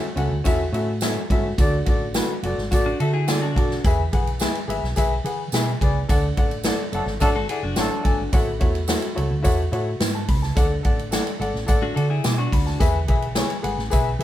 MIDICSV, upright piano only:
0, 0, Header, 1, 2, 480
1, 0, Start_track
1, 0, Tempo, 561272
1, 1354, Time_signature, 4, 2, 24, 8
1, 12175, End_track
2, 0, Start_track
2, 0, Title_t, "Upright piano"
2, 0, Program_c, 0, 0
2, 0, Note_on_c, 0, 45, 73
2, 114, Note_off_c, 0, 45, 0
2, 135, Note_on_c, 0, 61, 91
2, 139, Note_on_c, 0, 64, 78
2, 142, Note_on_c, 0, 66, 81
2, 146, Note_on_c, 0, 69, 80
2, 153, Note_on_c, 0, 78, 105
2, 278, Note_off_c, 0, 61, 0
2, 280, Note_off_c, 0, 64, 0
2, 281, Note_off_c, 0, 66, 0
2, 283, Note_off_c, 0, 69, 0
2, 287, Note_off_c, 0, 78, 0
2, 379, Note_on_c, 0, 61, 112
2, 384, Note_on_c, 0, 64, 102
2, 388, Note_on_c, 0, 66, 105
2, 392, Note_on_c, 0, 69, 99
2, 401, Note_on_c, 0, 76, 125
2, 520, Note_off_c, 0, 61, 0
2, 523, Note_off_c, 0, 64, 0
2, 525, Note_off_c, 0, 66, 0
2, 527, Note_off_c, 0, 69, 0
2, 531, Note_off_c, 0, 76, 0
2, 621, Note_on_c, 0, 61, 81
2, 624, Note_on_c, 0, 64, 78
2, 627, Note_on_c, 0, 66, 85
2, 631, Note_on_c, 0, 69, 80
2, 635, Note_on_c, 0, 76, 102
2, 762, Note_off_c, 0, 61, 0
2, 764, Note_off_c, 0, 64, 0
2, 765, Note_off_c, 0, 66, 0
2, 767, Note_off_c, 0, 69, 0
2, 769, Note_off_c, 0, 76, 0
2, 873, Note_on_c, 0, 64, 72
2, 874, Note_on_c, 0, 61, 83
2, 880, Note_on_c, 0, 66, 77
2, 884, Note_on_c, 0, 69, 83
2, 884, Note_on_c, 0, 76, 100
2, 1009, Note_off_c, 0, 61, 0
2, 1009, Note_off_c, 0, 64, 0
2, 1012, Note_off_c, 0, 66, 0
2, 1014, Note_off_c, 0, 69, 0
2, 1014, Note_off_c, 0, 76, 0
2, 1112, Note_on_c, 0, 61, 95
2, 1115, Note_on_c, 0, 64, 88
2, 1119, Note_on_c, 0, 66, 92
2, 1123, Note_on_c, 0, 69, 83
2, 1128, Note_on_c, 0, 76, 108
2, 1249, Note_off_c, 0, 61, 0
2, 1250, Note_off_c, 0, 64, 0
2, 1252, Note_off_c, 0, 66, 0
2, 1254, Note_off_c, 0, 69, 0
2, 1257, Note_off_c, 0, 76, 0
2, 1356, Note_on_c, 0, 66, 98
2, 1365, Note_on_c, 0, 50, 71
2, 1367, Note_on_c, 0, 69, 96
2, 1373, Note_on_c, 0, 74, 119
2, 1491, Note_off_c, 0, 66, 0
2, 1497, Note_off_c, 0, 69, 0
2, 1500, Note_off_c, 0, 74, 0
2, 1588, Note_on_c, 0, 66, 99
2, 1603, Note_on_c, 0, 69, 84
2, 1613, Note_on_c, 0, 74, 102
2, 1728, Note_off_c, 0, 66, 0
2, 1735, Note_off_c, 0, 69, 0
2, 1740, Note_off_c, 0, 74, 0
2, 1838, Note_on_c, 0, 66, 97
2, 1844, Note_on_c, 0, 69, 81
2, 1853, Note_on_c, 0, 71, 105
2, 1973, Note_off_c, 0, 66, 0
2, 1976, Note_off_c, 0, 69, 0
2, 1981, Note_off_c, 0, 71, 0
2, 2048, Note_off_c, 0, 50, 0
2, 2081, Note_on_c, 0, 66, 98
2, 2087, Note_on_c, 0, 69, 80
2, 2095, Note_on_c, 0, 74, 98
2, 2215, Note_off_c, 0, 66, 0
2, 2218, Note_off_c, 0, 69, 0
2, 2222, Note_off_c, 0, 74, 0
2, 2319, Note_on_c, 0, 66, 118
2, 2329, Note_on_c, 0, 69, 102
2, 2339, Note_on_c, 0, 74, 127
2, 2454, Note_off_c, 0, 66, 0
2, 2460, Note_off_c, 0, 69, 0
2, 2465, Note_off_c, 0, 74, 0
2, 2567, Note_on_c, 0, 66, 91
2, 2576, Note_on_c, 0, 69, 86
2, 2576, Note_on_c, 0, 76, 94
2, 2699, Note_off_c, 0, 66, 0
2, 2703, Note_off_c, 0, 69, 0
2, 2708, Note_off_c, 0, 76, 0
2, 2800, Note_on_c, 0, 66, 86
2, 2806, Note_on_c, 0, 78, 80
2, 2810, Note_on_c, 0, 69, 88
2, 2820, Note_on_c, 0, 74, 93
2, 2915, Note_off_c, 0, 78, 0
2, 2930, Note_on_c, 0, 81, 78
2, 2936, Note_off_c, 0, 66, 0
2, 2941, Note_off_c, 0, 69, 0
2, 2946, Note_off_c, 0, 74, 0
2, 3037, Note_off_c, 0, 81, 0
2, 3046, Note_on_c, 0, 66, 99
2, 3052, Note_on_c, 0, 81, 77
2, 3053, Note_on_c, 0, 69, 86
2, 3064, Note_on_c, 0, 74, 98
2, 3179, Note_off_c, 0, 66, 0
2, 3183, Note_off_c, 0, 69, 0
2, 3188, Note_off_c, 0, 74, 0
2, 3270, Note_off_c, 0, 81, 0
2, 3294, Note_on_c, 0, 68, 117
2, 3300, Note_on_c, 0, 52, 79
2, 3300, Note_on_c, 0, 71, 96
2, 3308, Note_on_c, 0, 76, 112
2, 3423, Note_off_c, 0, 68, 0
2, 3426, Note_off_c, 0, 71, 0
2, 3430, Note_off_c, 0, 76, 0
2, 3528, Note_on_c, 0, 68, 93
2, 3536, Note_on_c, 0, 71, 79
2, 3546, Note_on_c, 0, 78, 102
2, 3661, Note_off_c, 0, 68, 0
2, 3665, Note_off_c, 0, 71, 0
2, 3670, Note_off_c, 0, 78, 0
2, 3764, Note_on_c, 0, 68, 94
2, 3773, Note_on_c, 0, 71, 86
2, 3783, Note_on_c, 0, 76, 101
2, 3899, Note_off_c, 0, 68, 0
2, 3903, Note_off_c, 0, 71, 0
2, 3908, Note_off_c, 0, 76, 0
2, 3978, Note_off_c, 0, 52, 0
2, 3998, Note_on_c, 0, 68, 94
2, 4010, Note_on_c, 0, 71, 84
2, 4016, Note_on_c, 0, 76, 109
2, 4136, Note_off_c, 0, 68, 0
2, 4142, Note_off_c, 0, 71, 0
2, 4145, Note_off_c, 0, 76, 0
2, 4243, Note_on_c, 0, 68, 115
2, 4253, Note_on_c, 0, 71, 98
2, 4262, Note_on_c, 0, 76, 125
2, 4379, Note_off_c, 0, 68, 0
2, 4384, Note_off_c, 0, 71, 0
2, 4388, Note_off_c, 0, 76, 0
2, 4486, Note_on_c, 0, 68, 86
2, 4495, Note_on_c, 0, 71, 80
2, 4502, Note_on_c, 0, 78, 86
2, 4621, Note_off_c, 0, 68, 0
2, 4625, Note_off_c, 0, 71, 0
2, 4628, Note_off_c, 0, 78, 0
2, 4730, Note_on_c, 0, 68, 92
2, 4739, Note_on_c, 0, 71, 84
2, 4746, Note_on_c, 0, 76, 103
2, 4863, Note_off_c, 0, 68, 0
2, 4867, Note_off_c, 0, 71, 0
2, 4870, Note_off_c, 0, 76, 0
2, 4968, Note_on_c, 0, 68, 96
2, 4978, Note_on_c, 0, 71, 83
2, 4984, Note_on_c, 0, 74, 102
2, 5102, Note_off_c, 0, 68, 0
2, 5107, Note_off_c, 0, 71, 0
2, 5110, Note_off_c, 0, 74, 0
2, 5204, Note_on_c, 0, 69, 114
2, 5210, Note_on_c, 0, 74, 105
2, 5215, Note_on_c, 0, 50, 72
2, 5221, Note_on_c, 0, 78, 112
2, 5340, Note_off_c, 0, 69, 0
2, 5343, Note_off_c, 0, 74, 0
2, 5348, Note_off_c, 0, 78, 0
2, 5446, Note_on_c, 0, 69, 83
2, 5453, Note_on_c, 0, 74, 83
2, 5459, Note_on_c, 0, 78, 108
2, 5581, Note_off_c, 0, 69, 0
2, 5584, Note_off_c, 0, 74, 0
2, 5587, Note_off_c, 0, 78, 0
2, 5683, Note_on_c, 0, 69, 97
2, 5692, Note_on_c, 0, 74, 85
2, 5700, Note_on_c, 0, 78, 99
2, 5819, Note_off_c, 0, 69, 0
2, 5824, Note_off_c, 0, 74, 0
2, 5828, Note_off_c, 0, 78, 0
2, 5895, Note_off_c, 0, 50, 0
2, 5919, Note_on_c, 0, 69, 92
2, 5929, Note_on_c, 0, 74, 75
2, 5940, Note_on_c, 0, 78, 102
2, 6057, Note_off_c, 0, 69, 0
2, 6062, Note_off_c, 0, 74, 0
2, 6068, Note_off_c, 0, 78, 0
2, 6159, Note_on_c, 0, 69, 110
2, 6166, Note_on_c, 0, 74, 109
2, 6177, Note_on_c, 0, 78, 119
2, 6297, Note_off_c, 0, 69, 0
2, 6301, Note_off_c, 0, 74, 0
2, 6306, Note_off_c, 0, 78, 0
2, 6399, Note_on_c, 0, 69, 83
2, 6412, Note_on_c, 0, 74, 75
2, 6420, Note_on_c, 0, 78, 96
2, 6537, Note_off_c, 0, 69, 0
2, 6543, Note_off_c, 0, 74, 0
2, 6548, Note_off_c, 0, 78, 0
2, 6642, Note_on_c, 0, 69, 85
2, 6650, Note_on_c, 0, 74, 75
2, 6660, Note_on_c, 0, 78, 103
2, 6779, Note_off_c, 0, 69, 0
2, 6783, Note_off_c, 0, 74, 0
2, 6787, Note_off_c, 0, 78, 0
2, 6864, Note_on_c, 0, 69, 93
2, 6872, Note_on_c, 0, 74, 86
2, 6887, Note_on_c, 0, 80, 102
2, 7009, Note_off_c, 0, 69, 0
2, 7014, Note_off_c, 0, 74, 0
2, 7021, Note_off_c, 0, 80, 0
2, 7118, Note_on_c, 0, 64, 107
2, 7121, Note_on_c, 0, 66, 96
2, 7125, Note_on_c, 0, 45, 73
2, 7127, Note_on_c, 0, 69, 93
2, 7128, Note_on_c, 0, 73, 86
2, 7135, Note_on_c, 0, 78, 127
2, 7256, Note_off_c, 0, 64, 0
2, 7258, Note_off_c, 0, 66, 0
2, 7261, Note_off_c, 0, 69, 0
2, 7261, Note_off_c, 0, 73, 0
2, 7264, Note_off_c, 0, 78, 0
2, 7349, Note_on_c, 0, 64, 91
2, 7355, Note_on_c, 0, 66, 78
2, 7358, Note_on_c, 0, 69, 77
2, 7361, Note_on_c, 0, 73, 82
2, 7368, Note_on_c, 0, 78, 100
2, 7492, Note_off_c, 0, 64, 0
2, 7494, Note_off_c, 0, 66, 0
2, 7496, Note_off_c, 0, 69, 0
2, 7498, Note_off_c, 0, 73, 0
2, 7501, Note_off_c, 0, 78, 0
2, 7591, Note_on_c, 0, 64, 90
2, 7593, Note_on_c, 0, 69, 85
2, 7594, Note_on_c, 0, 66, 85
2, 7601, Note_on_c, 0, 73, 80
2, 7602, Note_on_c, 0, 78, 105
2, 7732, Note_off_c, 0, 64, 0
2, 7733, Note_off_c, 0, 69, 0
2, 7734, Note_off_c, 0, 66, 0
2, 7737, Note_off_c, 0, 73, 0
2, 7738, Note_off_c, 0, 78, 0
2, 7809, Note_off_c, 0, 45, 0
2, 7822, Note_on_c, 0, 64, 85
2, 7826, Note_on_c, 0, 66, 85
2, 7831, Note_on_c, 0, 69, 84
2, 7834, Note_on_c, 0, 73, 79
2, 7841, Note_on_c, 0, 76, 96
2, 7968, Note_off_c, 0, 64, 0
2, 7970, Note_off_c, 0, 66, 0
2, 7973, Note_off_c, 0, 69, 0
2, 7974, Note_off_c, 0, 73, 0
2, 7977, Note_off_c, 0, 76, 0
2, 8060, Note_on_c, 0, 64, 117
2, 8063, Note_on_c, 0, 66, 101
2, 8068, Note_on_c, 0, 69, 101
2, 8074, Note_on_c, 0, 73, 97
2, 8077, Note_on_c, 0, 78, 114
2, 8206, Note_off_c, 0, 64, 0
2, 8208, Note_off_c, 0, 66, 0
2, 8211, Note_off_c, 0, 69, 0
2, 8213, Note_off_c, 0, 73, 0
2, 8215, Note_off_c, 0, 78, 0
2, 8310, Note_on_c, 0, 64, 94
2, 8315, Note_on_c, 0, 66, 83
2, 8318, Note_on_c, 0, 69, 85
2, 8321, Note_on_c, 0, 73, 87
2, 8324, Note_on_c, 0, 78, 86
2, 8451, Note_off_c, 0, 64, 0
2, 8454, Note_off_c, 0, 66, 0
2, 8455, Note_off_c, 0, 69, 0
2, 8457, Note_off_c, 0, 73, 0
2, 8458, Note_off_c, 0, 78, 0
2, 8678, Note_on_c, 0, 81, 78
2, 8793, Note_off_c, 0, 81, 0
2, 8797, Note_on_c, 0, 83, 77
2, 8912, Note_off_c, 0, 83, 0
2, 8915, Note_on_c, 0, 81, 77
2, 9026, Note_on_c, 0, 69, 110
2, 9034, Note_on_c, 0, 50, 74
2, 9036, Note_on_c, 0, 74, 97
2, 9042, Note_on_c, 0, 78, 114
2, 9145, Note_off_c, 0, 81, 0
2, 9168, Note_off_c, 0, 69, 0
2, 9174, Note_off_c, 0, 74, 0
2, 9176, Note_off_c, 0, 78, 0
2, 9261, Note_on_c, 0, 69, 90
2, 9271, Note_on_c, 0, 74, 85
2, 9279, Note_on_c, 0, 78, 98
2, 9405, Note_off_c, 0, 69, 0
2, 9411, Note_off_c, 0, 74, 0
2, 9414, Note_off_c, 0, 78, 0
2, 9502, Note_on_c, 0, 69, 95
2, 9511, Note_on_c, 0, 74, 78
2, 9522, Note_on_c, 0, 78, 108
2, 9646, Note_off_c, 0, 69, 0
2, 9650, Note_off_c, 0, 74, 0
2, 9655, Note_off_c, 0, 78, 0
2, 9720, Note_off_c, 0, 50, 0
2, 9744, Note_on_c, 0, 69, 98
2, 9753, Note_on_c, 0, 74, 86
2, 9760, Note_on_c, 0, 78, 111
2, 9886, Note_off_c, 0, 69, 0
2, 9891, Note_off_c, 0, 74, 0
2, 9894, Note_off_c, 0, 78, 0
2, 9975, Note_on_c, 0, 69, 112
2, 9983, Note_on_c, 0, 74, 106
2, 9992, Note_on_c, 0, 78, 125
2, 10122, Note_off_c, 0, 69, 0
2, 10125, Note_off_c, 0, 74, 0
2, 10130, Note_off_c, 0, 78, 0
2, 10213, Note_on_c, 0, 69, 89
2, 10223, Note_on_c, 0, 74, 84
2, 10233, Note_on_c, 0, 78, 86
2, 10360, Note_off_c, 0, 69, 0
2, 10365, Note_off_c, 0, 74, 0
2, 10370, Note_off_c, 0, 78, 0
2, 10477, Note_on_c, 0, 86, 68
2, 10588, Note_on_c, 0, 85, 84
2, 10590, Note_off_c, 0, 86, 0
2, 10705, Note_off_c, 0, 85, 0
2, 10716, Note_on_c, 0, 83, 84
2, 10829, Note_off_c, 0, 83, 0
2, 10831, Note_on_c, 0, 81, 76
2, 10943, Note_on_c, 0, 68, 111
2, 10948, Note_on_c, 0, 52, 73
2, 10949, Note_on_c, 0, 71, 110
2, 10958, Note_on_c, 0, 76, 127
2, 11060, Note_off_c, 0, 81, 0
2, 11084, Note_off_c, 0, 68, 0
2, 11087, Note_off_c, 0, 71, 0
2, 11091, Note_off_c, 0, 76, 0
2, 11185, Note_on_c, 0, 68, 89
2, 11190, Note_on_c, 0, 71, 79
2, 11203, Note_on_c, 0, 76, 105
2, 11324, Note_off_c, 0, 68, 0
2, 11327, Note_off_c, 0, 71, 0
2, 11333, Note_off_c, 0, 76, 0
2, 11424, Note_on_c, 0, 68, 96
2, 11428, Note_on_c, 0, 71, 84
2, 11439, Note_on_c, 0, 73, 104
2, 11563, Note_off_c, 0, 68, 0
2, 11565, Note_off_c, 0, 71, 0
2, 11571, Note_off_c, 0, 73, 0
2, 11634, Note_off_c, 0, 52, 0
2, 11649, Note_on_c, 0, 68, 97
2, 11656, Note_on_c, 0, 71, 80
2, 11665, Note_on_c, 0, 78, 102
2, 11796, Note_off_c, 0, 68, 0
2, 11799, Note_off_c, 0, 71, 0
2, 11803, Note_off_c, 0, 78, 0
2, 11891, Note_on_c, 0, 68, 120
2, 11899, Note_on_c, 0, 71, 112
2, 11909, Note_on_c, 0, 76, 126
2, 12036, Note_off_c, 0, 68, 0
2, 12040, Note_off_c, 0, 71, 0
2, 12045, Note_off_c, 0, 76, 0
2, 12135, Note_on_c, 0, 68, 83
2, 12142, Note_on_c, 0, 71, 84
2, 12175, Note_off_c, 0, 68, 0
2, 12175, Note_off_c, 0, 71, 0
2, 12175, End_track
0, 0, End_of_file